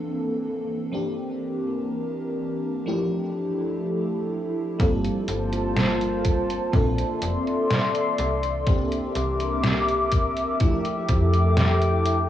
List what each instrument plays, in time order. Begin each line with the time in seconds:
Already playing: fm electric piano E3 A#3 C4 D4 A4, ambient pad E3 A#3 C4 D4 A4
0.92 fm electric piano E3 A#3 C4 D4 G4, ambient pad E3 D4 A#4
2.86 fm electric piano F3 A3 D4 E4 G4, ambient pad F3 E4 G4 A4
4.79 fm bass G1, fm electric piano G3 A#3 C4 F4 A4, ambient pad A#3 F4 C5 A5, kick, closed hi-hat
5.05 closed hi-hat
5.28 fm bass G1, closed hi-hat
5.53 closed hi-hat
5.77 snare, closed hi-hat
6.01 closed hi-hat
6.25 kick, closed hi-hat
6.50 closed hi-hat
6.72 fm bass A#1, fm electric piano E3 A#3 C4 D4 A4, ambient pad A4 D5 E5 C6, kick, closed hi-hat
6.98 closed hi-hat
7.22 fm bass F1, closed hi-hat
7.47 closed hi-hat
7.71 snare, closed hi-hat
7.95 closed hi-hat
8.18 fm bass C2, closed hi-hat
8.43 closed hi-hat
8.66 fm electric piano E3 A#3 C4 D4 G4, ambient pad A#4 E5 D6, kick, closed hi-hat
8.92 closed hi-hat
9.15 fm bass C2, closed hi-hat
9.40 closed hi-hat
9.64 snare, closed hi-hat
9.89 closed hi-hat
10.12 kick, closed hi-hat
10.37 closed hi-hat
10.60 fm electric piano F3 A3 D4 E4 G4, ambient pad A4 G5 D6, kick, closed hi-hat
10.85 closed hi-hat
11.09 fm bass F2, kick, closed hi-hat
11.34 closed hi-hat
11.57 snare, closed hi-hat
11.82 closed hi-hat
12.06 closed hi-hat